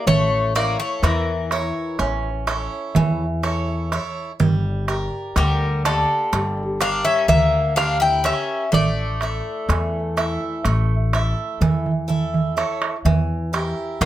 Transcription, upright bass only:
0.07 0.74 A1 medium
1.03 1.70 E2 loud
1.99 2.67 A1 medium
2.96 3.97 E2 medium
4.40 5.08 G1 medium
5.36 6.04 D2 loud
6.33 7.00 G1 medium
7.28 8.29 D2 medium
8.73 9.40 A1 medium
9.69 10.36 E2 medium
10.65 11.32 A1 medium
11.61 12.62 E2 medium
13.05 13.72 E2 medium
14.01 14.05 A#2 loud

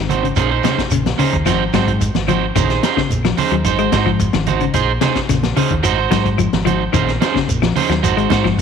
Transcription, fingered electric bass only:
0.00 0.30 G#1 medium
0.37 0.60 A#1 medium
0.91 1.14 A#1 medium
1.34 1.44 D#2 medium
1.46 1.69 G#1 medium
1.74 2.08 G#2 medium
2.15 2.49 G#1 medium
2.56 2.78 A#1 medium
3.10 3.33 A#1 medium
3.52 3.63 D#2 medium
3.64 3.88 G#1 medium
3.93 4.27 G#2 medium
4.34 4.68 G#1 medium
4.74 4.97 A#1 medium
5.29 5.52 A#1 medium
5.71 5.82 D#2 medium
5.83 6.07 G#1 loud
6.12 6.46 G#2 medium
6.53 6.87 G#1 medium
6.94 7.17 A#1 medium
7.48 7.71 A#1 medium
7.89 8.01 D#2 medium
8.02 8.26 G#1 loud
8.31 8.62 G#2 medium

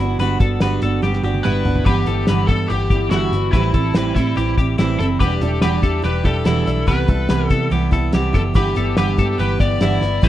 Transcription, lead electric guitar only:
1.44 1.87 B4 medium
1.85 2.50 G4 medium
2.47 2.70 A4 medium
2.68 3.10 G4 medium
3.10 3.50 F#4 medium
3.52 4.14 E4 medium
4.15 4.54 E4 medium
5.00 5.05 A4 medium
5.20 5.59 G4 medium
5.62 6.01 G4 medium
6.05 6.25 B4 medium
6.25 6.88 A4 medium
6.88 7.46 B4 medium
7.46 7.68 A4 medium
8.35 8.41 A4 medium
8.56 8.97 G4 medium
8.98 9.37 G4 medium
9.40 9.59 B4 medium
9.60 10.25 D5 medium
10.23 10.29 C5 medium

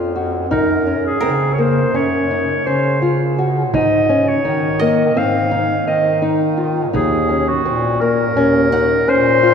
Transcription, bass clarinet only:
0.00 0.53 F2 medium
0.51 1.12 F#2 medium
1.23 1.96 C#3 medium
1.94 2.55 F#2 medium
2.66 3.74 C#3 medium
3.72 4.33 G#2 medium
4.43 5.17 D#3 medium
5.16 5.76 G#2 medium
5.87 6.95 D#3 medium
6.93 7.54 D#2 medium
7.64 8.37 A#2 medium
8.36 8.96 D#2 medium
9.07 9.54 A#2 medium

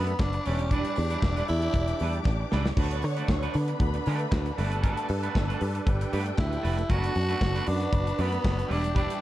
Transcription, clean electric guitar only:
0.00 0.11 A3 medium
0.08 muted clean electric guitar stroke medium
0.21 muted clean electric guitar stroke soft
0.34 muted clean electric guitar stroke soft
0.45 0.62 G3 medium
0.45 0.60 D4 medium
0.45 0.59 E4 medium
0.45 0.59 B4 medium
0.60 muted clean electric guitar stroke soft
0.72 0.95 G3 medium
0.72 0.95 D4 medium
0.72 0.95 E4 medium
0.72 0.96 B4 medium
1.11 1.23 G3 medium
1.11 1.23 D4 soft
1.11 1.23 E4 medium
1.11 1.23 B4 medium
1.37 1.47 G3 medium
1.37 1.47 D4 medium
1.37 1.48 E4 medium
1.37 1.48 B4 medium
1.48 muted clean electric guitar stroke soft
1.63 muted clean electric guitar stroke soft
1.75 muted clean electric guitar stroke soft
1.89 muted clean electric guitar stroke soft
2.02 2.18 G3 medium
2.02 2.15 D4 medium
2.02 2.15 E4 medium
2.02 2.14 B4 medium
2.16 muted clean electric guitar stroke soft
2.27 muted clean electric guitar stroke soft
2.40 muted clean electric guitar stroke soft
2.51 2.68 G3 medium
2.51 2.66 D4 medium
2.51 2.65 E4 medium
2.51 2.65 B4 medium
2.66 muted clean electric guitar stroke medium
2.78 3.01 A3 medium
2.78 3.01 D4 medium
2.78 3.02 F#4 loud
2.78 3.02 B4 loud
3.04 muted clean electric guitar stroke soft
3.17 3.28 A3 medium
3.17 3.28 D4 medium
3.17 3.28 F#4 medium
3.17 3.29 B4 medium
3.29 muted clean electric guitar stroke soft
3.42 3.54 A3 medium
3.42 3.55 D4 medium
3.42 3.54 F#4 medium
3.42 3.55 B4 medium
3.55 muted clean electric guitar stroke soft
3.69 muted clean electric guitar stroke soft
3.80 muted clean electric guitar stroke soft
3.95 muted clean electric guitar stroke soft
4.07 4.27 A3 medium
4.07 4.20 D4 medium
4.07 4.20 F#4 medium
4.07 4.19 B4 medium
4.20 muted clean electric guitar stroke soft
4.32 muted clean electric guitar stroke soft
4.46 muted clean electric guitar stroke soft
4.58 4.71 A3 medium
4.58 4.70 D4 medium
4.58 4.69 F#4 medium
4.58 4.69 B4 medium
4.70 4.81 A3 medium
4.70 4.81 D4 medium
4.70 4.82 F#4 medium
4.70 4.82 B4 medium
4.82 5.06 A3 medium
4.82 5.07 D4 medium
4.82 5.07 F#4 loud
4.82 5.07 B4 loud
5.09 muted clean electric guitar stroke soft
5.23 5.34 A3 soft
5.23 5.35 D4 medium
5.23 5.35 F#4 medium
5.23 5.35 B4 medium
5.35 muted clean electric guitar stroke soft
5.48 5.60 A3 medium
5.48 5.61 D4 medium
5.48 5.61 F#4 medium
5.48 5.61 B4 medium
5.62 muted clean electric guitar stroke soft
5.75 muted clean electric guitar stroke medium
5.87 muted clean electric guitar stroke soft
6.01 muted clean electric guitar stroke soft
6.13 6.29 A3 medium
6.13 6.25 D4 medium
6.13 6.25 F#4 medium
6.13 6.24 B4 medium
6.25 muted clean electric guitar stroke soft
6.38 muted clean electric guitar stroke soft
6.51 muted clean electric guitar stroke medium
6.62 6.80 A3 medium
6.62 6.77 D4 medium
6.62 6.76 F#4 medium
6.62 6.77 B4 medium
6.77 muted clean electric guitar stroke soft
6.89 7.13 A3 medium
6.89 7.13 D4 medium
6.89 7.13 F#4 medium
6.89 7.13 B4 medium
7.15 muted clean electric guitar stroke soft
7.28 7.40 A3 soft
7.28 7.40 D4 medium
7.28 7.40 F#4 medium
7.28 7.41 B4 medium
7.41 muted clean electric guitar stroke soft
7.55 7.66 A3 medium
7.55 7.66 D4 medium
7.55 7.67 F#4 medium
7.55 7.67 B4 medium
7.67 muted clean electric guitar stroke soft
7.81 muted clean electric guitar stroke soft
7.93 muted clean electric guitar stroke soft
8.06 muted clean electric guitar stroke soft
8.18 8.35 A3 medium
8.18 8.32 D4 medium
8.18 8.31 F#4 medium
8.18 8.31 B4 medium
8.32 muted clean electric guitar stroke soft
8.44 muted clean electric guitar stroke soft
8.57 muted clean electric guitar stroke soft
8.68 8.86 G3 medium
8.68 8.83 D4 medium
8.68 8.82 E4 loud
8.68 8.81 B4 medium
8.83 muted clean electric guitar stroke soft
8.95 9.19 G3 medium
8.95 9.19 D4 medium
8.95 9.20 E4 medium
8.95 9.20 B4 medium

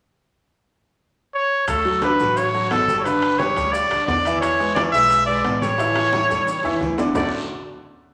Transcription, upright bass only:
1.68 2.16 D2 medium
2.20 2.67 A1 medium
2.71 3.51 G1 medium
3.57 3.88 D2 medium
3.91 4.07 D2 medium
4.08 4.88 E2 medium
4.93 5.41 B1 medium
5.45 6.24 A1 medium
6.30 6.62 E2 medium
6.64 6.80 E2 medium
6.81 7.11 D2 medium
7.15 7.31 D2 medium

